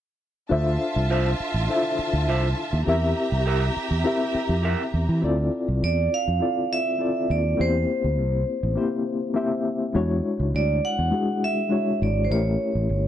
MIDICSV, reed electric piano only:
0, 0, Header, 1, 2, 480
1, 0, Start_track
1, 0, Key_signature, -1, "minor"
1, 0, Tempo, 589391
1, 420, Time_signature, 4, 2, 24, 8
1, 10650, End_track
2, 0, Start_track
2, 0, Title_t, "Reed electric piano"
2, 0, Program_c, 0, 4
2, 401, Note_on_c, 0, 62, 73
2, 405, Note_on_c, 0, 65, 60
2, 415, Note_on_c, 0, 69, 62
2, 417, Note_on_c, 0, 72, 71
2, 423, Note_on_c, 0, 76, 78
2, 556, Control_c, 0, 64, 127
2, 1313, Note_off_c, 0, 62, 0
2, 1315, Note_off_c, 0, 65, 0
2, 1320, Note_off_c, 0, 69, 0
2, 1321, Note_off_c, 0, 72, 0
2, 1324, Note_off_c, 0, 76, 0
2, 1370, Note_on_c, 0, 62, 71
2, 1375, Note_on_c, 0, 64, 53
2, 1381, Note_on_c, 0, 69, 68
2, 1387, Note_on_c, 0, 72, 67
2, 1393, Note_on_c, 0, 76, 85
2, 1429, Note_on_c, 0, 65, 62
2, 1430, Note_off_c, 0, 64, 0
2, 2278, Note_off_c, 0, 62, 0
2, 2283, Note_off_c, 0, 69, 0
2, 2286, Note_off_c, 0, 72, 0
2, 2289, Note_off_c, 0, 76, 0
2, 2307, Note_off_c, 0, 65, 0
2, 2330, Note_on_c, 0, 60, 70
2, 2337, Note_on_c, 0, 64, 66
2, 2341, Note_on_c, 0, 67, 71
2, 2348, Note_on_c, 0, 70, 76
2, 2350, Control_c, 0, 64, 0
2, 2354, Note_on_c, 0, 76, 88
2, 2505, Control_c, 0, 64, 127
2, 3238, Note_off_c, 0, 60, 0
2, 3241, Note_off_c, 0, 64, 0
2, 3243, Note_off_c, 0, 67, 0
2, 3246, Note_off_c, 0, 70, 0
2, 3250, Note_off_c, 0, 76, 0
2, 3291, Note_on_c, 0, 60, 72
2, 3295, Note_on_c, 0, 64, 68
2, 3305, Note_on_c, 0, 67, 62
2, 3307, Note_on_c, 0, 70, 68
2, 3313, Note_on_c, 0, 76, 78
2, 4198, Note_off_c, 0, 60, 0
2, 4200, Note_off_c, 0, 64, 0
2, 4205, Note_off_c, 0, 67, 0
2, 4206, Note_off_c, 0, 70, 0
2, 4209, Note_off_c, 0, 76, 0
2, 4248, Note_on_c, 0, 60, 71
2, 4255, Note_on_c, 0, 64, 66
2, 4259, Note_on_c, 0, 65, 64
2, 4266, Note_on_c, 0, 69, 65
2, 4269, Control_c, 0, 64, 0
2, 4271, Note_on_c, 0, 74, 84
2, 4426, Control_c, 0, 64, 127
2, 5157, Note_off_c, 0, 60, 0
2, 5160, Note_off_c, 0, 64, 0
2, 5162, Note_off_c, 0, 65, 0
2, 5166, Note_off_c, 0, 69, 0
2, 5168, Note_off_c, 0, 74, 0
2, 5208, Note_on_c, 0, 60, 54
2, 5213, Note_on_c, 0, 64, 51
2, 5218, Note_on_c, 0, 65, 57
2, 5225, Note_on_c, 0, 69, 51
2, 5230, Note_on_c, 0, 74, 60
2, 5666, Note_off_c, 0, 60, 0
2, 5668, Note_off_c, 0, 64, 0
2, 5671, Note_off_c, 0, 65, 0
2, 5674, Note_off_c, 0, 69, 0
2, 5676, Note_off_c, 0, 74, 0
2, 5689, Note_on_c, 0, 60, 59
2, 5695, Note_on_c, 0, 64, 52
2, 5700, Note_on_c, 0, 65, 54
2, 5705, Note_on_c, 0, 69, 57
2, 5711, Note_on_c, 0, 74, 67
2, 6146, Note_off_c, 0, 60, 0
2, 6149, Note_off_c, 0, 64, 0
2, 6152, Note_off_c, 0, 65, 0
2, 6154, Note_off_c, 0, 69, 0
2, 6157, Note_off_c, 0, 74, 0
2, 6166, Note_on_c, 0, 58, 68
2, 6173, Note_on_c, 0, 60, 54
2, 6177, Note_on_c, 0, 64, 57
2, 6182, Note_on_c, 0, 67, 56
2, 6190, Control_c, 0, 64, 0
2, 6190, Note_on_c, 0, 72, 68
2, 6355, Control_c, 0, 64, 127
2, 7077, Note_off_c, 0, 58, 0
2, 7080, Note_off_c, 0, 60, 0
2, 7082, Note_off_c, 0, 64, 0
2, 7085, Note_off_c, 0, 67, 0
2, 7089, Note_off_c, 0, 72, 0
2, 7130, Note_on_c, 0, 58, 77
2, 7132, Note_on_c, 0, 60, 59
2, 7139, Note_on_c, 0, 64, 64
2, 7143, Note_on_c, 0, 67, 59
2, 7149, Note_on_c, 0, 72, 81
2, 7587, Note_off_c, 0, 58, 0
2, 7588, Note_off_c, 0, 60, 0
2, 7592, Note_off_c, 0, 64, 0
2, 7594, Note_off_c, 0, 67, 0
2, 7597, Note_off_c, 0, 72, 0
2, 7608, Note_on_c, 0, 58, 69
2, 7616, Note_on_c, 0, 60, 68
2, 7620, Note_on_c, 0, 64, 62
2, 7623, Note_on_c, 0, 76, 65
2, 7625, Note_on_c, 0, 67, 66
2, 7632, Note_on_c, 0, 72, 72
2, 8066, Note_off_c, 0, 58, 0
2, 8070, Note_off_c, 0, 60, 0
2, 8070, Note_off_c, 0, 76, 0
2, 8072, Note_off_c, 0, 64, 0
2, 8075, Note_off_c, 0, 67, 0
2, 8078, Note_off_c, 0, 72, 0
2, 8091, Note_on_c, 0, 56, 69
2, 8098, Note_on_c, 0, 62, 70
2, 8101, Note_on_c, 0, 64, 71
2, 8104, Note_on_c, 0, 66, 71
2, 8111, Control_c, 0, 64, 0
2, 8114, Note_on_c, 0, 73, 85
2, 8243, Control_c, 0, 64, 127
2, 9000, Note_off_c, 0, 56, 0
2, 9003, Note_off_c, 0, 62, 0
2, 9005, Note_off_c, 0, 64, 0
2, 9006, Note_off_c, 0, 66, 0
2, 9011, Note_off_c, 0, 73, 0
2, 9047, Note_on_c, 0, 56, 65
2, 9052, Note_on_c, 0, 62, 57
2, 9062, Note_on_c, 0, 64, 53
2, 9066, Note_on_c, 0, 66, 59
2, 9070, Note_on_c, 0, 68, 68
2, 9506, Note_off_c, 0, 56, 0
2, 9509, Note_off_c, 0, 62, 0
2, 9514, Note_off_c, 0, 64, 0
2, 9516, Note_off_c, 0, 66, 0
2, 9517, Note_off_c, 0, 68, 0
2, 9522, Note_on_c, 0, 56, 64
2, 9528, Note_on_c, 0, 62, 54
2, 9535, Note_on_c, 0, 64, 52
2, 9537, Note_on_c, 0, 66, 51
2, 9545, Note_on_c, 0, 73, 66
2, 9983, Note_off_c, 0, 56, 0
2, 9987, Note_off_c, 0, 62, 0
2, 9990, Note_off_c, 0, 64, 0
2, 9991, Note_off_c, 0, 66, 0
2, 9995, Note_off_c, 0, 73, 0
2, 10011, Note_on_c, 0, 57, 69
2, 10016, Note_on_c, 0, 61, 58
2, 10020, Note_on_c, 0, 64, 62
2, 10025, Note_on_c, 0, 67, 54
2, 10032, Control_c, 0, 64, 0
2, 10032, Note_on_c, 0, 70, 68
2, 10158, Control_c, 0, 64, 127
2, 10650, Note_off_c, 0, 57, 0
2, 10650, Note_off_c, 0, 61, 0
2, 10650, Note_off_c, 0, 64, 0
2, 10650, Note_off_c, 0, 67, 0
2, 10650, Note_off_c, 0, 70, 0
2, 10650, End_track
0, 0, End_of_file